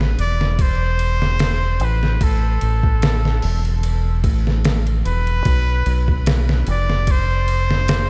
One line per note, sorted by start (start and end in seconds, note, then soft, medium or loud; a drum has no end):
0.00 0.15 A1 medium
0.00 snare medium
0.18 1.81 E1 medium
0.18 0.63 D5 loud
0.18 ride medium
0.41 snare soft
0.59 1.85 C5 loud
0.59 kick loud
0.59 ride medium
0.99 ride medium
1.22 snare soft
1.39 snare loud
1.39 ride medium
1.80 2.17 A1 medium
1.80 ride medium
1.84 2.25 B4 medium
2.03 snare soft
2.21 2.57 A1 loud
2.21 3.84 A4 medium
2.21 kick loud
2.21 ride medium
2.61 3.39 A1 medium
2.61 ride medium
2.83 kick loud
3.02 snare loud
3.02 ride medium
3.25 snare soft
3.42 4.23 E1 medium
3.42 open hi-hat medium
3.65 ride soft
3.83 ride medium
4.24 5.01 A1 loud
4.24 kick medium
4.24 ride medium
4.47 snare soft
4.65 snare loud
4.65 ride medium
4.87 ride soft
5.05 5.41 E1 medium
5.05 6.23 B4 loud
5.05 ride medium
5.27 ride soft
5.45 5.82 B1 loud
5.45 kick loud
5.45 ride medium
5.86 6.64 B1 medium
5.86 ride medium
6.08 kick loud
6.26 snare loud
6.26 ride medium
6.49 snare medium
6.67 8.10 F1 medium
6.67 7.12 D5 loud
6.67 ride medium
6.90 snare soft
7.07 8.10 C5 loud
7.07 kick loud
7.07 ride medium
7.48 ride medium
7.71 snare soft
7.88 snare loud
7.88 ride medium